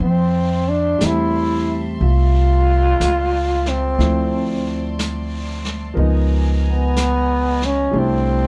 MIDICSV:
0, 0, Header, 1, 6, 480
1, 0, Start_track
1, 0, Tempo, 990099
1, 6, Time_signature, 4, 2, 24, 8
1, 4106, End_track
2, 0, Start_track
2, 0, Title_t, "String section"
2, 0, Program_c, 0, 48
2, 5, Note_on_c, 0, 76, 58
2, 8, Note_on_c, 0, 81, 58
2, 9, Note_on_c, 0, 84, 65
2, 1917, Note_off_c, 0, 76, 0
2, 1953, Note_on_c, 0, 74, 57
2, 2875, Note_off_c, 0, 81, 0
2, 2876, Note_off_c, 0, 84, 0
2, 2893, Note_off_c, 0, 74, 0
2, 2906, Note_on_c, 0, 82, 58
2, 2908, Note_on_c, 0, 80, 70
2, 2910, Note_on_c, 0, 75, 60
2, 3844, Note_off_c, 0, 82, 0
2, 3845, Note_off_c, 0, 80, 0
2, 3846, Note_off_c, 0, 75, 0
2, 3864, Note_on_c, 0, 84, 67
2, 3867, Note_on_c, 0, 74, 58
2, 3868, Note_on_c, 0, 64, 65
2, 3874, Note_on_c, 0, 81, 59
2, 4106, Note_off_c, 0, 64, 0
2, 4106, Note_off_c, 0, 74, 0
2, 4106, Note_off_c, 0, 81, 0
2, 4106, Note_off_c, 0, 84, 0
2, 4106, End_track
3, 0, Start_track
3, 0, Title_t, "Trombone"
3, 0, Program_c, 1, 57
3, 9, Note_on_c, 1, 60, 80
3, 332, Note_on_c, 1, 62, 81
3, 339, Note_off_c, 1, 60, 0
3, 512, Note_on_c, 1, 64, 90
3, 520, Note_off_c, 1, 62, 0
3, 897, Note_off_c, 1, 64, 0
3, 986, Note_on_c, 1, 65, 106
3, 1788, Note_on_c, 1, 60, 86
3, 1795, Note_off_c, 1, 65, 0
3, 2424, Note_off_c, 1, 60, 0
3, 3248, Note_on_c, 1, 59, 87
3, 3709, Note_on_c, 1, 61, 89
3, 3716, Note_off_c, 1, 59, 0
3, 3872, Note_on_c, 1, 60, 92
3, 3879, Note_off_c, 1, 61, 0
3, 4106, Note_off_c, 1, 60, 0
3, 4106, End_track
4, 0, Start_track
4, 0, Title_t, "Grand piano"
4, 0, Program_c, 2, 0
4, 0, Control_c, 2, 64, 127
4, 11, Control_c, 2, 64, 0
4, 110, Control_c, 2, 64, 127
4, 478, Note_on_c, 2, 55, 46
4, 487, Note_on_c, 2, 57, 39
4, 497, Note_on_c, 2, 60, 38
4, 505, Note_on_c, 2, 76, 49
4, 1925, Note_off_c, 2, 57, 0
4, 1929, Note_off_c, 2, 55, 0
4, 1932, Note_off_c, 2, 60, 0
4, 1932, Note_on_c, 2, 53, 48
4, 1933, Note_on_c, 2, 57, 44
4, 1939, Note_on_c, 2, 60, 41
4, 1940, Note_on_c, 2, 64, 50
4, 1943, Note_off_c, 2, 76, 0
4, 1943, Control_c, 2, 64, 0
4, 2035, Control_c, 2, 64, 127
4, 2871, Note_off_c, 2, 53, 0
4, 2879, Note_on_c, 2, 53, 54
4, 2885, Note_on_c, 2, 70, 52
4, 2892, Note_off_c, 2, 57, 0
4, 2895, Note_off_c, 2, 60, 0
4, 2896, Note_off_c, 2, 64, 0
4, 2897, Note_on_c, 2, 59, 50
4, 2901, Control_c, 2, 64, 0
4, 2903, Note_on_c, 2, 63, 56
4, 2997, Control_c, 2, 64, 127
4, 3836, Note_on_c, 2, 55, 49
4, 3840, Note_off_c, 2, 53, 0
4, 3843, Note_off_c, 2, 70, 0
4, 3843, Note_on_c, 2, 57, 43
4, 3848, Note_on_c, 2, 62, 45
4, 3849, Note_off_c, 2, 59, 0
4, 3852, Note_off_c, 2, 63, 0
4, 3853, Control_c, 2, 64, 0
4, 3858, Note_on_c, 2, 64, 61
4, 3924, Control_c, 2, 64, 127
4, 4106, Note_off_c, 2, 55, 0
4, 4106, Note_off_c, 2, 57, 0
4, 4106, Note_off_c, 2, 62, 0
4, 4106, Note_off_c, 2, 64, 0
4, 4106, End_track
5, 0, Start_track
5, 0, Title_t, "Upright bass"
5, 0, Program_c, 3, 32
5, 0, Note_on_c, 3, 41, 73
5, 471, Note_off_c, 3, 41, 0
5, 492, Note_on_c, 3, 40, 64
5, 958, Note_off_c, 3, 40, 0
5, 973, Note_on_c, 3, 36, 80
5, 1437, Note_off_c, 3, 36, 0
5, 1455, Note_on_c, 3, 37, 63
5, 1916, Note_off_c, 3, 37, 0
5, 1933, Note_on_c, 3, 38, 77
5, 2872, Note_off_c, 3, 38, 0
5, 2893, Note_on_c, 3, 37, 80
5, 3828, Note_off_c, 3, 37, 0
5, 3846, Note_on_c, 3, 36, 71
5, 4106, Note_off_c, 3, 36, 0
5, 4106, End_track
6, 0, Start_track
6, 0, Title_t, "Drums"
6, 0, Note_on_c, 9, 25, 35
6, 488, Note_off_c, 9, 25, 0
6, 488, Note_on_c, 9, 25, 33
6, 488, Note_on_c, 9, 38, 38
6, 488, Note_on_c, 9, 44, 55
6, 536, Note_off_c, 9, 38, 0
6, 536, Note_off_c, 9, 44, 0
6, 973, Note_off_c, 9, 25, 0
6, 973, Note_on_c, 9, 25, 34
6, 1458, Note_off_c, 9, 25, 0
6, 1458, Note_on_c, 9, 25, 36
6, 1458, Note_on_c, 9, 38, 41
6, 1458, Note_on_c, 9, 44, 48
6, 1506, Note_off_c, 9, 38, 0
6, 1506, Note_off_c, 9, 44, 0
6, 1773, Note_on_c, 9, 38, 28
6, 1822, Note_off_c, 9, 38, 0
6, 1939, Note_off_c, 9, 25, 0
6, 1939, Note_on_c, 9, 25, 35
6, 1939, Note_on_c, 9, 38, 29
6, 1987, Note_off_c, 9, 38, 0
6, 2420, Note_off_c, 9, 25, 0
6, 2420, Note_on_c, 9, 25, 38
6, 2420, Note_on_c, 9, 38, 40
6, 2420, Note_on_c, 9, 44, 44
6, 2468, Note_off_c, 9, 38, 0
6, 2468, Note_off_c, 9, 44, 0
6, 2738, Note_on_c, 9, 38, 24
6, 2786, Note_off_c, 9, 38, 0
6, 2898, Note_off_c, 9, 25, 0
6, 2898, Note_on_c, 9, 25, 36
6, 3376, Note_off_c, 9, 25, 0
6, 3376, Note_on_c, 9, 25, 35
6, 3376, Note_on_c, 9, 38, 45
6, 3376, Note_on_c, 9, 44, 53
6, 3424, Note_off_c, 9, 38, 0
6, 3424, Note_off_c, 9, 44, 0
6, 3693, Note_on_c, 9, 38, 27
6, 3741, Note_off_c, 9, 38, 0
6, 3849, Note_off_c, 9, 25, 0
6, 3849, Note_on_c, 9, 25, 39
6, 4106, Note_off_c, 9, 25, 0
6, 4106, End_track
0, 0, End_of_file